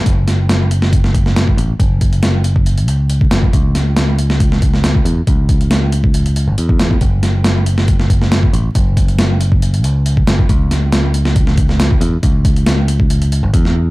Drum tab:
HH |x-x-x-x-x-x-x-x-|x-xxx-x-xxx-x-x-|x-x-x-x-x-x-x-x-|x-xxx-x-xxx-x-x-|
SD |--o-o--o-o-oo---|----o---------o-|--o-o--o-o-oo---|----o---------o-|
BD |o-------o-o--o--|o-o----o-----o-o|o-------o-o--o--|o-o----o-----o-o|

HH |x-x-x-x-x-x-x-x-|x-xxx-x-xxx-x-x-|x-x-x-x-x-x-x-x-|x-xxx-x-xxx-x---|
SD |--o-o--o-o-oo---|----o---------o-|--o-o--o-o-oo---|----o--------o--|
BD |o-------o-o--o--|o-o----o-----o-o|o-------o-o--o--|o-o----o----o---|